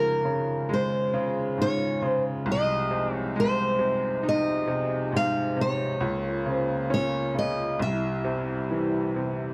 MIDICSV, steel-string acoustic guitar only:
0, 0, Header, 1, 2, 480
1, 0, Start_track
1, 0, Key_signature, -4, "minor"
1, 0, Tempo, 887574
1, 1333, Time_signature, 4, 2, 24, 8
1, 3732, Tempo, 900901
1, 5138, End_track
2, 0, Start_track
2, 0, Title_t, "Steel-string acoustic guitar"
2, 0, Program_c, 0, 25
2, 0, Note_on_c, 0, 70, 96
2, 397, Note_on_c, 0, 72, 73
2, 400, Note_off_c, 0, 70, 0
2, 871, Note_off_c, 0, 72, 0
2, 874, Note_on_c, 0, 73, 95
2, 1106, Note_off_c, 0, 73, 0
2, 1106, Note_on_c, 0, 72, 95
2, 1201, Note_off_c, 0, 72, 0
2, 1361, Note_on_c, 0, 75, 93
2, 1701, Note_off_c, 0, 75, 0
2, 1701, Note_on_c, 0, 73, 93
2, 1836, Note_off_c, 0, 73, 0
2, 1838, Note_on_c, 0, 72, 95
2, 2316, Note_off_c, 0, 72, 0
2, 2318, Note_on_c, 0, 75, 91
2, 2791, Note_off_c, 0, 75, 0
2, 2793, Note_on_c, 0, 77, 99
2, 3028, Note_off_c, 0, 77, 0
2, 3036, Note_on_c, 0, 73, 81
2, 3511, Note_off_c, 0, 73, 0
2, 3511, Note_on_c, 0, 72, 81
2, 3745, Note_off_c, 0, 72, 0
2, 3751, Note_on_c, 0, 73, 93
2, 3987, Note_off_c, 0, 73, 0
2, 3990, Note_on_c, 0, 75, 89
2, 4221, Note_off_c, 0, 75, 0
2, 4223, Note_on_c, 0, 76, 82
2, 4916, Note_off_c, 0, 76, 0
2, 5138, End_track
0, 0, End_of_file